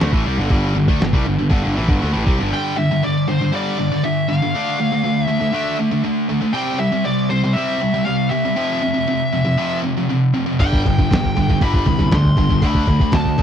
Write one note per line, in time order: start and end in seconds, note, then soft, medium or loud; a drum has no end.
0.00 0.12 D2 loud
0.00 0.12 D3 loud
0.00 0.13 A3 loud
0.00 snare loud
0.00 crash medium
0.12 0.25 A1 loud
0.12 0.25 A2 loud
0.12 0.25 E3 loud
0.12 kick loud
0.25 0.37 C2 loud
0.25 0.37 C3 loud
0.25 0.38 G3 medium
0.38 0.50 G1 loud
0.38 0.50 G2 medium
0.38 0.50 D3 loud
0.50 0.74 G1 medium
0.50 0.74 G2 medium
0.50 0.75 D3 loud
0.50 0.76 G3 loud
0.50 kick loud
0.50 crash medium
0.75 0.87 G1 medium
0.75 0.88 G2 medium
0.75 0.87 D3 medium
0.88 1.00 D2 loud
0.88 1.00 D3 medium
0.88 1.00 A3 loud
0.88 kick loud
1.01 1.13 G1 medium
1.01 1.14 G2 medium
1.01 1.13 D3 medium
1.01 snare loud
1.01 crash medium
1.13 1.25 C2 loud
1.13 1.25 C3 medium
1.13 1.26 G3 loud
1.13 kick loud
1.26 1.39 G1 medium
1.26 1.37 G2 medium
1.26 1.38 D3 medium
1.38 1.50 G1 medium
1.38 1.48 G2 medium
1.38 1.50 D3 medium
1.49 1.62 G1 loud
1.49 1.62 G2 medium
1.49 1.62 D3 loud
1.49 kick loud
1.49 crash medium
1.63 1.77 G1 loud
1.63 1.75 G2 medium
1.63 1.75 D3 loud
1.76 1.88 A1 medium
1.76 1.88 A2 medium
1.76 1.88 E3 loud
1.88 2.00 G1 medium
1.88 2.01 G2 medium
1.88 1.99 D3 loud
1.88 kick loud
2.01 2.14 D2 medium
2.01 2.13 D3 medium
2.01 2.13 A3 loud
2.01 crash medium
2.13 2.26 A1 loud
2.13 2.25 A2 loud
2.13 2.25 E3 loud
2.25 2.38 C2 loud
2.25 2.38 C3 medium
2.25 2.38 G3 loud
2.25 kick loud
2.39 2.52 G1 medium
2.39 2.50 G2 medium
2.39 2.51 D3 loud
2.51 2.75 G2 medium
2.51 2.76 D3 medium
2.51 2.76 G3 loud
2.51 2.76 G5 loud
2.77 2.90 G2 medium
2.77 2.90 D3 medium
2.77 3.03 E5 loud
2.91 3.02 G2 medium
2.91 3.03 D3 medium
3.03 3.25 G2 medium
3.03 3.26 D3 medium
3.03 3.28 D5 medium
3.28 3.40 G2 medium
3.28 3.40 D3 medium
3.28 3.54 C5 medium
3.41 3.51 G2 medium
3.41 3.51 D3 medium
3.52 3.76 G2 medium
3.52 3.76 D3 loud
3.52 3.77 G3 loud
3.52 4.01 D5 medium
3.78 3.90 G2 medium
3.78 3.90 D3 medium
3.92 4.02 G2 medium
3.92 4.03 D3 medium
4.04 4.26 G2 medium
4.04 4.26 D3 medium
4.04 4.28 E5 loud
4.29 4.41 G2 medium
4.29 4.41 D3 medium
4.29 5.24 F5 loud
4.42 4.54 G2 medium
4.42 4.54 D3 medium
4.55 4.78 D3 loud
4.55 4.78 A3 medium
4.55 4.78 D4 loud
4.80 4.91 D3 medium
4.80 4.91 A3 medium
4.92 5.03 D3 medium
4.92 5.03 A3 medium
5.04 5.27 D3 medium
5.04 5.27 A3 loud
5.24 5.76 E5 loud
5.28 5.40 D3 medium
5.28 5.39 A3 medium
5.41 5.53 D3 medium
5.41 5.53 A3 medium
5.54 5.78 D3 medium
5.54 5.78 A3 loud
5.54 5.78 D4 loud
5.79 5.91 D3 medium
5.79 5.90 A3 medium
5.92 6.02 D3 medium
5.92 6.03 A3 medium
6.04 6.27 D3 medium
6.04 6.27 A3 medium
6.29 6.41 D3 medium
6.29 6.40 A3 medium
6.41 6.53 D3 medium
6.41 6.54 A3 medium
6.53 6.78 C3 loud
6.53 6.78 G3 medium
6.53 6.79 C4 loud
6.53 6.79 G5 loud
6.79 6.91 C3 medium
6.79 6.91 G3 medium
6.79 7.03 E5 loud
6.92 7.04 C3 medium
6.92 7.04 G3 loud
7.05 7.28 C3 medium
7.05 7.28 G3 medium
7.05 7.30 D5 loud
7.30 7.43 C3 medium
7.30 7.42 G3 medium
7.30 7.54 C5 medium
7.44 7.55 C3 medium
7.44 7.56 G3 medium
7.53 7.80 C3 medium
7.53 7.80 G3 loud
7.53 8.05 E5 loud
7.58 7.81 C4 loud
7.81 7.93 C3 medium
7.81 7.93 G3 medium
7.94 8.05 C3 medium
7.94 8.05 G3 medium
8.05 8.29 C3 medium
8.05 8.29 G3 medium
8.05 8.30 F5 medium
8.30 8.44 C3 medium
8.30 8.44 G3 medium
8.30 9.78 E5 loud
8.45 8.55 C3 medium
8.45 8.57 G3 medium
8.56 8.80 F2 medium
8.56 8.80 C3 loud
8.56 8.81 F3 loud
8.82 8.93 F2 medium
8.82 8.92 C3 medium
8.94 9.06 F2 medium
8.94 9.07 C3 loud
9.07 9.30 F2 medium
9.07 9.30 C3 medium
9.32 9.43 F2 medium
9.32 9.43 C3 medium
9.44 9.56 F2 medium
9.44 9.57 C3 medium
9.58 9.82 F2 medium
9.58 9.82 C3 loud
9.58 9.82 F3 medium
9.83 9.96 F2 medium
9.83 9.96 C3 medium
9.97 10.09 F2 medium
9.97 10.09 C3 medium
10.10 10.32 F2 medium
10.10 10.32 C3 medium
10.34 10.46 F2 medium
10.34 10.45 C3 medium
10.46 10.59 F2 medium
10.46 10.59 C3 medium
10.59 10.83 G1 medium
10.59 10.83 G2 medium
10.59 10.83 D3 medium
10.59 10.83 G3 loud
10.59 11.57 G5 medium
10.59 kick medium
10.59 crash medium
10.73 kick medium
10.85 11.08 G1 loud
10.85 10.97 G2 medium
10.85 10.97 D3 medium
10.85 kick medium
10.85 crash medium
10.98 11.10 G2 medium
10.98 11.10 D3 medium
10.98 kick medium
11.11 11.34 G1 medium
11.11 11.33 G2 medium
11.11 11.33 D3 medium
11.11 kick medium
11.11 snare loud
11.11 crash medium
11.24 kick medium
11.36 11.59 G1 medium
11.36 11.49 G2 medium
11.36 11.48 D3 medium
11.36 kick medium
11.36 crash medium
11.49 11.60 G2 medium
11.49 11.61 D3 medium
11.49 kick medium
11.61 11.84 G1 medium
11.61 11.85 G2 medium
11.61 11.85 D3 medium
11.61 11.85 G3 medium
11.61 12.14 B5 loud
11.61 kick medium
11.61 crash medium
11.74 kick medium
11.86 12.09 C2 medium
11.86 11.99 G2 medium
11.86 11.98 D3 medium
11.86 kick medium
11.86 crash medium
11.99 12.12 G2 medium
11.99 12.11 D3 medium
11.99 kick medium
12.11 12.35 D2 medium
12.11 12.35 G2 medium
12.11 12.35 D3 medium
12.11 12.61 C6 loud
12.11 kick medium
12.11 snare loud
12.11 crash medium
12.24 kick medium
12.37 12.60 G1 loud
12.37 12.50 G2 medium
12.37 12.49 D3 medium
12.37 kick medium
12.37 crash medium
12.50 12.63 G2 medium
12.50 12.61 D3 medium
12.50 kick medium
12.62 12.86 D2 medium
12.62 12.86 D3 loud
12.62 12.87 A3 loud
12.62 12.87 D4 loud
12.62 kick medium
12.62 crash medium
12.66 13.16 B5 loud
12.75 kick medium
12.87 13.11 D2 medium
12.87 13.00 D3 medium
12.87 13.00 A3 medium
12.87 kick medium
12.87 crash medium
13.00 13.12 D3 medium
13.00 13.12 A3 medium
13.00 kick medium
13.12 13.36 D2 medium
13.12 13.36 D3 medium
13.12 13.36 A3 medium
13.12 13.43 A5 medium
13.12 kick medium
13.12 snare loud
13.12 crash medium
13.25 kick medium
13.38 13.43 D2 loud
13.38 13.43 D3 medium
13.38 13.43 A3 medium
13.38 kick medium
13.38 crash medium